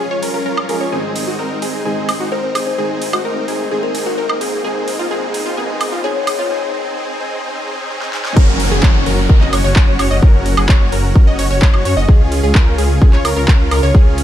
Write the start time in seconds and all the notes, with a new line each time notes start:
Already playing: F3 G#3 C#4 G#4, riser
0.11 C#2 C#4 F4 C#5
0.22 C#2 C#4 F4 A#4, open hi-hat
0.34 C#2 C#4 F4 A#4
0.46 C#2 C#4 F4 A#4
0.57 high woodblock
0.68 C#2 F3 G#3 C#4 F4 G#4 A#4, open hi-hat
0.81 C#2 C#4 F4 C#5
0.91 G#1 G#2 D#3 G#3 C4 D#4 G#4
1.16 open hi-hat
1.27 C4 D#4 F#4
1.39 G#1 C4 D#4 A#4
1.62 G#1 C4 D#4 G#4, open hi-hat
1.84 G#1 G#2 D#3 G#3 C4 D#4 G#4
2.09 open hi-hat, high woodblock
2.20 G#1 C4 D#4 F#4
2.32 G#1 C4 D#4 A#4 C5
2.43 C5
2.55 G#1 C4 D#4 G#4, open hi-hat, high woodblock
2.67 C5
2.77 G#1 G#2 D#3 G#3 C4 D#4 G#4
3.02 open hi-hat
3.13 G#1 C4 D#4 F#4 D#5, high woodblock
3.25 G#1 C4 D#4 A#4
3.48 G#1 C4 D#4 G#4, open hi-hat
3.70 G#1 G#2 D#3 G#3 C4 D#4 G#4
3.83 A#4
3.95 open hi-hat
4.06 G#1 C4 D#4 F#4 A#4
4.18 G#2 C4 D#4 A#4
4.29 high woodblock
4.41 G#2 C4 D#4 G#4, open hi-hat
4.53 G#4
4.63 A#1 G#2 D#3 G#3 C4 D#4 G#4
4.88 open hi-hat
4.99 A#1 C4 D#4 F4
5.10 A#1 G#2 D#3 G#3 C4 D#4 G#4
5.34 open hi-hat
5.46 A#1 C4 D#4 F4
5.56 A#1 G#2 D#3 G#3 C4 D#4 G#4
5.81 open hi-hat, high woodblock
5.92 A#1 C4 D#4 F4
6.03 A#1 G#2 D#3 G#3 C4 D#4 G#4 C#5
6.16 C#5
6.27 open hi-hat, high woodblock
6.39 A#1 C4 D#4 F4 C#5
6.51 C4 D#4 G#4
6.74 C4 D#4 G#4
6.97 C4 D#4 G#4
7.20 C4 D#4 G#4
7.43 C4 D#4 G#4
7.67 C4 D#4 G#4
7.90 C4 D#4 G#4
8.02 snare
8.13 C4 D#4 G#4, snare
8.25 snare
8.36 F#1 C#4 F#4 A#4, kick, crash, downlifter
8.60 open hi-hat
8.71 F#1 C#4 F#4 G#4
8.83 F#1 C#4 F#4 C#5, kick, clap
9.06 F#1 C#4 F#4 A#4, open hi-hat
9.29 F#1 C#4 F#4 A#4, kick
9.41 F#1 C#4 F#4 D#5, clap
9.53 F#1 C#4 F#4 C#5, open hi-hat, high woodblock
9.64 F#1 C#4 F#4 C#5
9.76 F#1 C#4 F#4 C#5, kick, clap
9.99 F#1 C#4 F#4 C#5, open hi-hat, high woodblock
10.11 F#1 C#4 F#4 D#5
10.22 F#1 C#4 A#4, kick
10.46 open hi-hat
10.57 F#1 C#4 F#4 G#4, high woodblock
10.69 F#1 C#4 F#4 C#5, kick, clap
10.92 F#1 C#4 F#4 A#4, open hi-hat
11.15 F#1 C#4 F#4 A#4, kick
11.27 F#1 C#4 F#4 D#5
11.39 F#1 C#4 F#4 C#5, open hi-hat
11.50 F#1 C#4 F#4 C#5
11.62 F#1 C#4 F#4 C#5, kick, clap
11.74 high woodblock
11.85 F#2 C#4 F#4 C#5, open hi-hat
11.97 F#1 C#4 F#4 D#5
12.09 C#2 C#4 F4 G#4, kick
12.32 open hi-hat
12.43 C#2 C#4 F4 G#4
12.55 C#2 C#4 F4 A#4, kick, clap
12.78 C#2 C#4 F4 G#4, open hi-hat
13.02 C#2 C#4 F4 G#4, kick
13.13 C#2 C#4 F4 C#5, clap
13.25 C#2 C#4 F4 A#4, open hi-hat, high woodblock
13.36 C#2 C#4 F4 A#4
13.48 C#2 C#4 F4 A#4, kick, clap
13.71 C#2 C#4 F4 A#4, open hi-hat, high woodblock
13.83 C#2 C#4 F4 C#5
13.95 C#2 C#4 F4 G#4, kick
14.18 open hi-hat